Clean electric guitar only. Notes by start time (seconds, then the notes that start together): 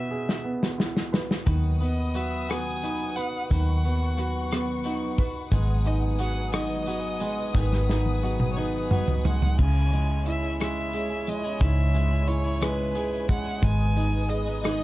1.46 D#3 F#3 B3 F#4 B4
1.80 B3 F#4 B4
2.14 F#3 B3 F#4 B4
2.49 D#3 F#3 B3 F#4 B4
2.83 F#3 B3 F#4 B4
3.16 B3 F#4 B4
3.50 D#3 F#3 B3 F#4 B4
3.84 B3 F#4 B4
4.17 F#3 B3 F#4 B4
4.51 D#3 F#3 B3 F#4 B4
4.84 F#3 B3 F#4 B4
5.18 B3 F#4 B4
5.51 G#2 D#3 F#3 B3 D#4 G#4
5.85 F#3 B3 D#4 G#4
6.19 F#3 B3 D#4 G#4
6.52 G#2 D#3 F#3 B3 D#4 G#4
6.87 F#3 B3 D#4 G#4
7.20 F#3 B3 D#4 G#4
7.55 G#2 D#3 F#3 B3 D#4 G#4
7.88 F#3 B3 D#4 G#4
8.22 F#3 B3 D#4 G#4
8.56 G#2 D#3 F#3 B3 D#4 G#4
8.91 F#3 B3 D#4 G#4
9.24 F#3 B3 D#4 G#4
9.58 C#3 G#3 C#4 E4 G#4
9.92 G#3 C#4 E4 G#4
10.09 C#4 E4 G#4
10.43 C#4 E4 G#4
10.60 C#3 G#3 C#4 E4 G#4
10.94 G#3 C#4 E4 G#4
11.10 C#4 E4 G#4
11.44 C#4 E4 G#4
11.60 C#3 G#3 C#4 E4 G#4
11.94 G#3 C#4 E4 G#4
12.11 C#4 E4 G#4
12.44 C#4 E4 G#4
12.61 C#3 G#3 C#4 E4 G#4
12.95 G#3 C#4 E4 G#4
13.11 C#4 E4 G#4
13.45 C#4 E4 G#4
13.62 G#2 D#3 G#3 B3 D#4 G#4
13.96 G#3 B3 D#4 G#4
14.12 G#3 B3 D#4 G#4
14.46 G#3 B3 D#4 G#4
14.63 G#2 D#3 G#3 B3 D#4 G#4